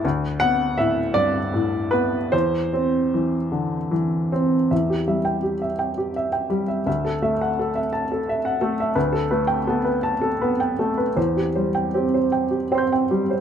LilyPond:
<<
  \new Staff \with { instrumentName = "Upright piano" } { \time 6/8 \key e \minor \tempo 4. = 54 << { r8 fis''8 e''8 d''4 b'8 | c''2~ c''8 r8 | r2. | r2. |
r2. | r2 <g'' c''' g'''>4 | } \\ { r2. | r2. | e''16 g'16 e''16 g''16 g'16 e''16 g''16 g'16 e''16 g''16 g'16 e''16 | e''16 a'16 e''16 fis''16 a'16 e''16 a''16 a'16 e''16 fis''16 a'16 e''16 |
b'16 a'16 b'16 g''16 a'16 b'16 a''16 a'16 b'16 g''16 a'16 b'16 | c''16 g'16 c''16 g''16 g'16 c''16 g''16 g'16 c''16 g''16 g'16 c''16 | } >> }
  \new Staff \with { instrumentName = "Upright piano" } { \clef bass \time 6/8 \key e \minor d,8 b8 a,8 g,8 a,8 b8 | e,8 c'8 e8 d8 e8 c'8 | e,8 g4 r4 g8 | d,8 a4 r4 a8 |
d,8 a8 b4 b8 a8 | e,8 g8 c'4 c'8 g8 | }
>>